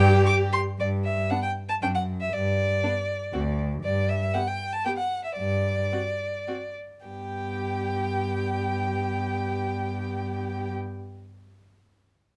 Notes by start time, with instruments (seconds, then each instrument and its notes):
Already playing: cello G2, violin G4 G5, viola G4
0.26 violin D6
0.53 violin C6
0.79 cello G2, violin D5
1.04 violin E5
1.30 viola B3, violin D4 F#5
1.42 violin G5
1.69 violin A5
1.82 cello F#2, viola C4, violin D4 G5
1.95 violin F#5
2.21 violin E5
2.33 cello G2, violin D5
2.84 viola B3, violin D4
3.33 cello D2, viola C4, violin F#4
3.83 cello G2, violin D5
4.09 violin E5
4.34 viola B3, violin G4 F#5
4.47 violin G5
4.72 violin A5
4.85 viola B3, violin G4 G5
4.98 violin F#5
5.24 violin E5
5.37 cello G2, violin D5
5.92 viola C4, violin F#4
6.48 viola C4, violin F#4
7.06 cello G2, viola B3, violin G4 G5